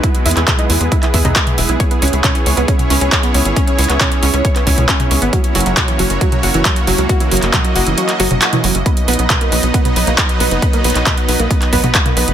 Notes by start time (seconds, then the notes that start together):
Already playing: G#3 B3 E4 B4
0.03 E4 G#4, kick, closed hi-hat
0.15 closed hi-hat
0.26 E2 E4, open hi-hat
0.31 closed hi-hat
0.37 E2 E4, clap, closed hi-hat
0.48 E5, kick, clap, closed hi-hat, mid tom
0.59 D#4, closed hi-hat
0.70 E2 E4, open hi-hat
0.81 E2, closed hi-hat
0.92 E4, kick, closed hi-hat
1.03 E4, clap, closed hi-hat
1.14 E2 E5, kick, open hi-hat
1.25 E2 D#4, closed hi-hat, mid tom
1.36 E4, kick, clap, closed hi-hat
1.47 closed hi-hat, mid tom
1.58 E1 E4, open hi-hat
1.69 B1 E4, closed hi-hat
1.80 C#4 C#5, kick, closed hi-hat
1.91 B3, closed hi-hat
2.02 C#2 C#4, open hi-hat
2.08 closed hi-hat
2.13 C#2, closed hi-hat
2.24 C#4, kick, clap, closed hi-hat, mid tom
2.35 C#4, closed hi-hat
2.46 C#2 C#5, open hi-hat
2.57 C#2 B3, closed hi-hat
2.68 C#4, kick, closed hi-hat
2.79 closed hi-hat, mid tom
2.90 C#2 C#4, open hi-hat
3.01 C#2 C#4, closed hi-hat
3.12 C#5, kick, clap, closed hi-hat
3.23 B3, closed hi-hat
3.34 C#2 C#4, open hi-hat
3.45 G#1, closed hi-hat
3.56 C#4, kick, closed hi-hat
3.67 C#4, closed hi-hat
3.79 C#2 C#5, open hi-hat
3.84 closed hi-hat
3.90 C#2 B3, clap, closed hi-hat
4.01 C#4, kick, clap, closed hi-hat, mid tom
4.12 closed hi-hat
4.23 C#2 C#4, open hi-hat
4.34 C#2 C#4, closed hi-hat
4.45 C#5, kick, closed hi-hat
4.56 B3, clap, closed hi-hat
4.67 C#2 C#4, kick, open hi-hat
4.78 C#2, closed hi-hat, mid tom
4.89 C#4, kick, clap, closed hi-hat
5.00 C#4, closed hi-hat, mid tom
5.11 C#2 C#5, open hi-hat
5.22 G#1 B3, closed hi-hat
5.33 F#3 A#3 F#4 C#5, kick, closed hi-hat
5.44 closed hi-hat
5.55 F#1 F#3, open hi-hat
5.61 closed hi-hat
5.66 F#1 F#3, closed hi-hat
5.77 F#4, kick, clap, closed hi-hat, mid tom
5.88 E3, closed hi-hat
5.99 F#1 F#3, open hi-hat
6.10 F#1, closed hi-hat
6.21 F#3, kick, closed hi-hat
6.32 F#3, closed hi-hat, mid tom
6.43 F#1 F#4, open hi-hat
6.54 F#1 E3, closed hi-hat
6.65 F#3, kick, clap, closed hi-hat
6.76 closed hi-hat
6.87 F#1 F#3, open hi-hat
6.98 C#2 F#3, closed hi-hat
7.09 F#4 D#5, kick, closed hi-hat
7.20 E3, closed hi-hat
7.31 F#1 F#3, open hi-hat
7.37 closed hi-hat
7.42 F#1, clap, closed hi-hat
7.54 F#3, kick, clap, closed hi-hat, mid tom
7.65 F#3, closed hi-hat
7.76 F#1 F#4, open hi-hat
7.87 F#1 E3, closed hi-hat
7.98 F#3, closed hi-hat
8.09 clap, closed hi-hat
8.20 F#1 F#3, open hi-hat
8.31 F#1 F#3, closed hi-hat, mid tom
8.42 F#4, clap, closed hi-hat
8.53 E3, closed hi-hat, mid tom
8.64 F#1 F#3, open hi-hat
8.75 F#1, closed hi-hat
8.86 F#3 B3 D#4 B4 D#5, kick, closed hi-hat
8.97 closed hi-hat
9.08 B1 B3, open hi-hat
9.13 closed hi-hat
9.19 B1 B3, closed hi-hat
9.30 B4, kick, clap, closed hi-hat, mid tom
9.41 A#3, closed hi-hat
9.52 B1 B3, open hi-hat
9.63 B1, closed hi-hat
9.74 B3, kick, closed hi-hat
9.85 B3, closed hi-hat, mid tom
9.96 B1 B4, open hi-hat
10.07 B1 A#3, closed hi-hat
10.18 B3, kick, clap, closed hi-hat
10.29 closed hi-hat
10.40 B1 B3, open hi-hat
10.51 F#1 B3, closed hi-hat
10.62 B4, kick, closed hi-hat
10.73 A#3, closed hi-hat
10.84 B1 B3, open hi-hat
10.90 closed hi-hat
10.95 B1, clap, closed hi-hat
11.06 B3, kick, clap, closed hi-hat, mid tom
11.18 B3, closed hi-hat
11.29 B1 B4, open hi-hat
11.40 B1 A#3, closed hi-hat
11.51 B3, kick, closed hi-hat
11.62 clap, closed hi-hat
11.73 B1 B3, kick, open hi-hat
11.84 B1 B3, closed hi-hat, mid tom
11.95 B4, kick, clap, closed hi-hat
12.06 A#3, closed hi-hat, mid tom
12.17 B1 B3, open hi-hat
12.28 F#1, closed hi-hat